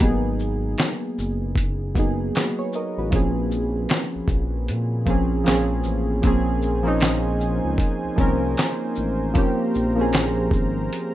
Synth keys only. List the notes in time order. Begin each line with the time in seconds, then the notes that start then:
0.00 F#3 A#3 B3 D#4 G#4
1.95 F#3 A#3 B3 D#4
1.99 G#4
2.36 F#4 B4
2.59 G#4 C#5
2.75 A#4 D#5
2.98 F#4 B4
3.10 F3 A#3 C4
3.15 C#4 G#4
5.05 F3 A#3 C4
5.10 C#4 G#4
5.44 F3 A#3 C4 C#4
5.49 G#4
6.22 F3 A#3 C4
6.26 C#4 G#4
6.83 F3 A#3 C4 C#4
6.88 D#4
8.16 F3 A#3 C4 C#4
8.21 A#4
9.34 F3 A#3 C4 C#4
9.38 G4
9.95 F3 A#3 C4
10.00 C#4 G#4